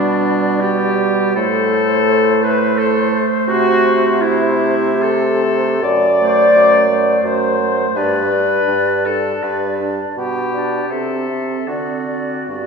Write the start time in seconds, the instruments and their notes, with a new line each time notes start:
Already playing: bassoon B2, clarinet G3, oboe D4, french horn D4, flute D5
0.61 oboe G4, french horn G4
1.36 bassoon A2, clarinet A3, oboe A4, french horn A4, flute C5
2.43 oboe B4, french horn B4
2.78 oboe A4, french horn A4
3.48 bassoon C3, french horn F#4, oboe F#4
4.21 oboe E4, french horn E4
5.02 french horn A4, oboe A4
5.82 bassoon F#2, oboe D5, french horn D5
6.20 clarinet A3, flute C5
6.55 bassoon F#2
6.91 clarinet A3, flute C5
7.24 bassoon F#2, french horn C5, oboe C5
7.60 clarinet A3, flute C5
7.96 bassoon G2, clarinet D4, french horn B4, oboe B4, flute D5
8.31 clarinet D4, flute D5
8.68 bassoon G2
9.05 clarinet D4, french horn A4, oboe A4, flute D5
9.43 bassoon G2, oboe B4, french horn B4
9.80 clarinet D4, flute D5
10.17 bassoon B2, oboe G4, french horn G4
10.53 clarinet D4, flute D5
10.90 bassoon C3, clarinet C4, oboe A4, french horn A4, flute E5
11.28 clarinet C4, flute E5
11.67 bassoon D3, clarinet C4, french horn F#4, oboe F#4, flute D5
12.06 clarinet C4, flute D5
12.49 bassoon G2, clarinet B3, french horn F#4, oboe F#4, flute D5